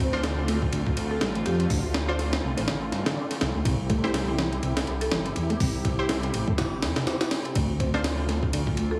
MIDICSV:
0, 0, Header, 1, 7, 480
1, 0, Start_track
1, 0, Key_signature, -1, "minor"
1, 0, Tempo, 487805
1, 1675, Time_signature, 4, 2, 24, 8
1, 8852, End_track
2, 0, Start_track
2, 0, Title_t, "Marimba"
2, 0, Program_c, 0, 12
2, 1091, Note_on_c, 0, 69, 93
2, 1248, Note_off_c, 0, 69, 0
2, 1433, Note_on_c, 0, 67, 95
2, 1812, Note_off_c, 0, 67, 0
2, 4930, Note_on_c, 0, 69, 92
2, 5088, Note_off_c, 0, 69, 0
2, 8769, Note_on_c, 0, 69, 94
2, 8852, Note_off_c, 0, 69, 0
2, 8852, End_track
3, 0, Start_track
3, 0, Title_t, "Synth stab"
3, 0, Program_c, 1, 62
3, 129, Note_on_c, 1, 62, 100
3, 129, Note_on_c, 1, 65, 93
3, 130, Note_on_c, 1, 72, 110
3, 194, Note_off_c, 1, 62, 0
3, 194, Note_off_c, 1, 65, 0
3, 194, Note_off_c, 1, 72, 0
3, 2050, Note_on_c, 1, 62, 96
3, 2050, Note_on_c, 1, 65, 90
3, 2051, Note_on_c, 1, 72, 105
3, 2115, Note_off_c, 1, 62, 0
3, 2115, Note_off_c, 1, 65, 0
3, 2115, Note_off_c, 1, 72, 0
3, 3972, Note_on_c, 1, 67, 91
3, 3972, Note_on_c, 1, 72, 109
3, 3973, Note_on_c, 1, 64, 100
3, 4035, Note_off_c, 1, 67, 0
3, 4035, Note_off_c, 1, 72, 0
3, 4036, Note_off_c, 1, 64, 0
3, 5891, Note_on_c, 1, 64, 97
3, 5891, Note_on_c, 1, 67, 92
3, 5891, Note_on_c, 1, 72, 114
3, 5955, Note_off_c, 1, 64, 0
3, 5955, Note_off_c, 1, 67, 0
3, 5955, Note_off_c, 1, 72, 0
3, 7812, Note_on_c, 1, 62, 100
3, 7812, Note_on_c, 1, 65, 91
3, 7812, Note_on_c, 1, 72, 106
3, 7875, Note_off_c, 1, 62, 0
3, 7875, Note_off_c, 1, 72, 0
3, 7876, Note_off_c, 1, 65, 0
3, 8852, End_track
4, 0, Start_track
4, 0, Title_t, "Analog synth pad"
4, 0, Program_c, 2, 89
4, 0, Note_on_c, 2, 50, 87
4, 0, Note_on_c, 2, 57, 75
4, 0, Note_on_c, 2, 60, 77
4, 0, Note_on_c, 2, 65, 92
4, 3557, Note_off_c, 2, 50, 0
4, 3557, Note_off_c, 2, 57, 0
4, 3557, Note_off_c, 2, 60, 0
4, 3558, Note_off_c, 2, 65, 0
4, 3596, Note_on_c, 2, 48, 82
4, 3596, Note_on_c, 2, 64, 81
4, 3596, Note_on_c, 2, 67, 92
4, 3599, Note_on_c, 2, 60, 79
4, 7397, Note_off_c, 2, 48, 0
4, 7397, Note_off_c, 2, 64, 0
4, 7397, Note_off_c, 2, 67, 0
4, 7435, Note_on_c, 2, 50, 87
4, 7435, Note_on_c, 2, 57, 78
4, 7436, Note_on_c, 2, 65, 97
4, 8852, Note_off_c, 2, 50, 0
4, 8852, Note_off_c, 2, 57, 0
4, 8852, Note_off_c, 2, 60, 0
4, 8852, Note_off_c, 2, 65, 0
4, 8852, End_track
5, 0, Start_track
5, 0, Title_t, "Tonewheel organ"
5, 0, Program_c, 3, 16
5, 0, Note_on_c, 3, 60, 75
5, 224, Note_off_c, 3, 60, 0
5, 234, Note_on_c, 3, 50, 85
5, 334, Note_off_c, 3, 50, 0
5, 370, Note_on_c, 3, 50, 75
5, 445, Note_off_c, 3, 50, 0
5, 473, Note_on_c, 3, 57, 76
5, 574, Note_off_c, 3, 57, 0
5, 713, Note_on_c, 3, 50, 103
5, 814, Note_off_c, 3, 50, 0
5, 1194, Note_on_c, 3, 55, 82
5, 1325, Note_off_c, 3, 55, 0
5, 1569, Note_on_c, 3, 60, 75
5, 1616, Note_off_c, 3, 60, 0
5, 1672, Note_on_c, 3, 50, 101
5, 1773, Note_off_c, 3, 50, 0
5, 2529, Note_on_c, 3, 60, 77
5, 2576, Note_off_c, 3, 60, 0
5, 2631, Note_on_c, 3, 50, 102
5, 2693, Note_off_c, 3, 50, 0
5, 3007, Note_on_c, 3, 50, 101
5, 3107, Note_off_c, 3, 50, 0
5, 3112, Note_on_c, 3, 62, 83
5, 3213, Note_off_c, 3, 62, 0
5, 3592, Note_on_c, 3, 48, 98
5, 3693, Note_off_c, 3, 48, 0
5, 3833, Note_on_c, 3, 57, 78
5, 4064, Note_off_c, 3, 57, 0
5, 4074, Note_on_c, 3, 48, 84
5, 4174, Note_off_c, 3, 48, 0
5, 4212, Note_on_c, 3, 48, 74
5, 4286, Note_off_c, 3, 48, 0
5, 4313, Note_on_c, 3, 52, 76
5, 4414, Note_off_c, 3, 52, 0
5, 4552, Note_on_c, 3, 48, 102
5, 4653, Note_off_c, 3, 48, 0
5, 5034, Note_on_c, 3, 52, 86
5, 5165, Note_off_c, 3, 52, 0
5, 5412, Note_on_c, 3, 57, 78
5, 5457, Note_off_c, 3, 57, 0
5, 5513, Note_on_c, 3, 48, 99
5, 5614, Note_off_c, 3, 48, 0
5, 6372, Note_on_c, 3, 57, 76
5, 6417, Note_off_c, 3, 57, 0
5, 6474, Note_on_c, 3, 48, 104
5, 6534, Note_off_c, 3, 48, 0
5, 6851, Note_on_c, 3, 48, 104
5, 6949, Note_off_c, 3, 48, 0
5, 6955, Note_on_c, 3, 60, 79
5, 7055, Note_off_c, 3, 60, 0
5, 7437, Note_on_c, 3, 50, 103
5, 7536, Note_off_c, 3, 50, 0
5, 7677, Note_on_c, 3, 60, 73
5, 7906, Note_off_c, 3, 60, 0
5, 7919, Note_on_c, 3, 50, 82
5, 8017, Note_off_c, 3, 50, 0
5, 8055, Note_on_c, 3, 50, 79
5, 8128, Note_off_c, 3, 50, 0
5, 8158, Note_on_c, 3, 57, 79
5, 8257, Note_off_c, 3, 57, 0
5, 8396, Note_on_c, 3, 50, 101
5, 8496, Note_off_c, 3, 50, 0
5, 8852, End_track
6, 0, Start_track
6, 0, Title_t, "Detuned saw bass"
6, 0, Program_c, 4, 39
6, 0, Note_on_c, 4, 38, 94
6, 681, Note_off_c, 4, 38, 0
6, 713, Note_on_c, 4, 38, 91
6, 913, Note_off_c, 4, 38, 0
6, 955, Note_on_c, 4, 38, 90
6, 1153, Note_off_c, 4, 38, 0
6, 1197, Note_on_c, 4, 33, 106
6, 1395, Note_off_c, 4, 33, 0
6, 1437, Note_on_c, 4, 41, 84
6, 1635, Note_off_c, 4, 41, 0
6, 1674, Note_on_c, 4, 38, 94
6, 2362, Note_off_c, 4, 38, 0
6, 2398, Note_on_c, 4, 36, 97
6, 2506, Note_off_c, 4, 36, 0
6, 2534, Note_on_c, 4, 33, 85
6, 2870, Note_off_c, 4, 33, 0
6, 2876, Note_on_c, 4, 43, 100
6, 2985, Note_off_c, 4, 43, 0
6, 3357, Note_on_c, 4, 36, 86
6, 3466, Note_off_c, 4, 36, 0
6, 3492, Note_on_c, 4, 38, 80
6, 3574, Note_off_c, 4, 38, 0
6, 3597, Note_on_c, 4, 36, 93
6, 4523, Note_off_c, 4, 36, 0
6, 4558, Note_on_c, 4, 36, 97
6, 4755, Note_off_c, 4, 36, 0
6, 4796, Note_on_c, 4, 36, 90
6, 4994, Note_off_c, 4, 36, 0
6, 5034, Note_on_c, 4, 31, 103
6, 5233, Note_off_c, 4, 31, 0
6, 5276, Note_on_c, 4, 40, 80
6, 5474, Note_off_c, 4, 40, 0
6, 5514, Note_on_c, 4, 36, 97
6, 6201, Note_off_c, 4, 36, 0
6, 6238, Note_on_c, 4, 33, 99
6, 6346, Note_off_c, 4, 33, 0
6, 6373, Note_on_c, 4, 31, 83
6, 6716, Note_on_c, 4, 40, 101
6, 6731, Note_off_c, 4, 31, 0
6, 6825, Note_off_c, 4, 40, 0
6, 7434, Note_on_c, 4, 38, 100
6, 8362, Note_off_c, 4, 38, 0
6, 8399, Note_on_c, 4, 38, 95
6, 8596, Note_off_c, 4, 38, 0
6, 8640, Note_on_c, 4, 38, 92
6, 8836, Note_off_c, 4, 38, 0
6, 8852, End_track
7, 0, Start_track
7, 0, Title_t, "Drums"
7, 129, Note_on_c, 9, 38, 54
7, 228, Note_off_c, 9, 38, 0
7, 232, Note_on_c, 9, 38, 120
7, 232, Note_on_c, 9, 51, 92
7, 330, Note_off_c, 9, 38, 0
7, 330, Note_off_c, 9, 51, 0
7, 475, Note_on_c, 9, 38, 49
7, 475, Note_on_c, 9, 51, 72
7, 573, Note_off_c, 9, 38, 0
7, 573, Note_off_c, 9, 51, 0
7, 612, Note_on_c, 9, 36, 98
7, 710, Note_off_c, 9, 36, 0
7, 714, Note_on_c, 9, 51, 93
7, 812, Note_off_c, 9, 51, 0
7, 852, Note_on_c, 9, 36, 97
7, 950, Note_off_c, 9, 36, 0
7, 953, Note_on_c, 9, 51, 70
7, 1052, Note_off_c, 9, 51, 0
7, 1193, Note_on_c, 9, 38, 119
7, 1193, Note_on_c, 9, 51, 91
7, 1291, Note_off_c, 9, 38, 0
7, 1291, Note_off_c, 9, 51, 0
7, 1332, Note_on_c, 9, 51, 46
7, 1430, Note_off_c, 9, 51, 0
7, 1434, Note_on_c, 9, 51, 70
7, 1532, Note_off_c, 9, 51, 0
7, 1573, Note_on_c, 9, 51, 45
7, 1671, Note_off_c, 9, 51, 0
7, 1674, Note_on_c, 9, 46, 82
7, 1675, Note_on_c, 9, 36, 114
7, 1773, Note_off_c, 9, 36, 0
7, 1773, Note_off_c, 9, 46, 0
7, 1913, Note_on_c, 9, 38, 108
7, 1913, Note_on_c, 9, 51, 81
7, 2011, Note_off_c, 9, 38, 0
7, 2011, Note_off_c, 9, 51, 0
7, 2156, Note_on_c, 9, 38, 42
7, 2156, Note_on_c, 9, 51, 66
7, 2254, Note_off_c, 9, 38, 0
7, 2254, Note_off_c, 9, 51, 0
7, 2292, Note_on_c, 9, 38, 109
7, 2292, Note_on_c, 9, 51, 79
7, 2390, Note_off_c, 9, 38, 0
7, 2390, Note_off_c, 9, 51, 0
7, 2534, Note_on_c, 9, 38, 43
7, 2534, Note_on_c, 9, 51, 65
7, 2633, Note_off_c, 9, 38, 0
7, 2633, Note_off_c, 9, 51, 0
7, 2635, Note_on_c, 9, 38, 104
7, 2635, Note_on_c, 9, 51, 85
7, 2733, Note_off_c, 9, 38, 0
7, 2733, Note_off_c, 9, 51, 0
7, 2877, Note_on_c, 9, 38, 42
7, 2877, Note_on_c, 9, 51, 62
7, 2975, Note_off_c, 9, 38, 0
7, 2975, Note_off_c, 9, 51, 0
7, 3014, Note_on_c, 9, 38, 105
7, 3014, Note_on_c, 9, 51, 81
7, 3112, Note_off_c, 9, 38, 0
7, 3112, Note_off_c, 9, 51, 0
7, 3255, Note_on_c, 9, 38, 43
7, 3255, Note_on_c, 9, 51, 67
7, 3353, Note_off_c, 9, 38, 0
7, 3353, Note_off_c, 9, 51, 0
7, 3357, Note_on_c, 9, 38, 107
7, 3357, Note_on_c, 9, 51, 84
7, 3455, Note_off_c, 9, 38, 0
7, 3455, Note_off_c, 9, 51, 0
7, 3595, Note_on_c, 9, 36, 114
7, 3595, Note_on_c, 9, 51, 89
7, 3694, Note_off_c, 9, 36, 0
7, 3694, Note_off_c, 9, 51, 0
7, 3835, Note_on_c, 9, 36, 98
7, 3835, Note_on_c, 9, 51, 70
7, 3933, Note_off_c, 9, 36, 0
7, 3933, Note_off_c, 9, 51, 0
7, 3975, Note_on_c, 9, 38, 52
7, 4073, Note_off_c, 9, 38, 0
7, 4075, Note_on_c, 9, 38, 120
7, 4075, Note_on_c, 9, 51, 93
7, 4173, Note_off_c, 9, 38, 0
7, 4173, Note_off_c, 9, 51, 0
7, 4315, Note_on_c, 9, 38, 109
7, 4315, Note_on_c, 9, 51, 81
7, 4414, Note_off_c, 9, 38, 0
7, 4414, Note_off_c, 9, 51, 0
7, 4453, Note_on_c, 9, 51, 42
7, 4552, Note_off_c, 9, 51, 0
7, 4554, Note_on_c, 9, 51, 67
7, 4653, Note_off_c, 9, 51, 0
7, 4692, Note_on_c, 9, 38, 106
7, 4692, Note_on_c, 9, 51, 80
7, 4790, Note_off_c, 9, 38, 0
7, 4790, Note_off_c, 9, 51, 0
7, 4794, Note_on_c, 9, 51, 41
7, 4893, Note_off_c, 9, 51, 0
7, 4932, Note_on_c, 9, 51, 65
7, 5031, Note_off_c, 9, 51, 0
7, 5033, Note_on_c, 9, 38, 118
7, 5033, Note_on_c, 9, 51, 86
7, 5132, Note_off_c, 9, 38, 0
7, 5132, Note_off_c, 9, 51, 0
7, 5172, Note_on_c, 9, 51, 46
7, 5271, Note_off_c, 9, 51, 0
7, 5274, Note_on_c, 9, 51, 71
7, 5372, Note_off_c, 9, 51, 0
7, 5413, Note_on_c, 9, 51, 45
7, 5511, Note_off_c, 9, 51, 0
7, 5514, Note_on_c, 9, 36, 114
7, 5514, Note_on_c, 9, 46, 81
7, 5612, Note_off_c, 9, 36, 0
7, 5612, Note_off_c, 9, 46, 0
7, 5754, Note_on_c, 9, 36, 100
7, 5754, Note_on_c, 9, 51, 70
7, 5853, Note_off_c, 9, 36, 0
7, 5853, Note_off_c, 9, 51, 0
7, 5993, Note_on_c, 9, 38, 123
7, 5993, Note_on_c, 9, 51, 93
7, 6092, Note_off_c, 9, 38, 0
7, 6092, Note_off_c, 9, 51, 0
7, 6133, Note_on_c, 9, 51, 46
7, 6231, Note_off_c, 9, 51, 0
7, 6236, Note_on_c, 9, 51, 83
7, 6334, Note_off_c, 9, 51, 0
7, 6372, Note_on_c, 9, 36, 101
7, 6471, Note_off_c, 9, 36, 0
7, 6476, Note_on_c, 9, 38, 109
7, 6476, Note_on_c, 9, 51, 83
7, 6575, Note_off_c, 9, 38, 0
7, 6575, Note_off_c, 9, 51, 0
7, 6716, Note_on_c, 9, 38, 105
7, 6716, Note_on_c, 9, 51, 79
7, 6814, Note_off_c, 9, 38, 0
7, 6814, Note_off_c, 9, 51, 0
7, 6851, Note_on_c, 9, 38, 107
7, 6851, Note_on_c, 9, 51, 80
7, 6950, Note_off_c, 9, 38, 0
7, 6950, Note_off_c, 9, 51, 0
7, 6956, Note_on_c, 9, 38, 103
7, 6956, Note_on_c, 9, 51, 81
7, 7054, Note_off_c, 9, 38, 0
7, 7054, Note_off_c, 9, 51, 0
7, 7093, Note_on_c, 9, 38, 112
7, 7093, Note_on_c, 9, 51, 85
7, 7191, Note_off_c, 9, 38, 0
7, 7191, Note_off_c, 9, 51, 0
7, 7195, Note_on_c, 9, 38, 108
7, 7195, Note_on_c, 9, 51, 85
7, 7293, Note_off_c, 9, 38, 0
7, 7293, Note_off_c, 9, 51, 0
7, 7333, Note_on_c, 9, 51, 39
7, 7431, Note_off_c, 9, 51, 0
7, 7433, Note_on_c, 9, 51, 90
7, 7434, Note_on_c, 9, 36, 115
7, 7532, Note_off_c, 9, 51, 0
7, 7533, Note_off_c, 9, 36, 0
7, 7675, Note_on_c, 9, 36, 98
7, 7675, Note_on_c, 9, 51, 70
7, 7774, Note_off_c, 9, 36, 0
7, 7774, Note_off_c, 9, 51, 0
7, 7813, Note_on_c, 9, 38, 54
7, 7912, Note_off_c, 9, 38, 0
7, 7915, Note_on_c, 9, 38, 120
7, 7915, Note_on_c, 9, 51, 91
7, 8013, Note_off_c, 9, 38, 0
7, 8013, Note_off_c, 9, 51, 0
7, 8155, Note_on_c, 9, 38, 48
7, 8155, Note_on_c, 9, 51, 69
7, 8253, Note_off_c, 9, 38, 0
7, 8253, Note_off_c, 9, 51, 0
7, 8293, Note_on_c, 9, 36, 102
7, 8391, Note_off_c, 9, 36, 0
7, 8396, Note_on_c, 9, 51, 92
7, 8494, Note_off_c, 9, 51, 0
7, 8532, Note_on_c, 9, 36, 95
7, 8630, Note_off_c, 9, 36, 0
7, 8631, Note_on_c, 9, 51, 70
7, 8730, Note_off_c, 9, 51, 0
7, 8852, End_track
0, 0, End_of_file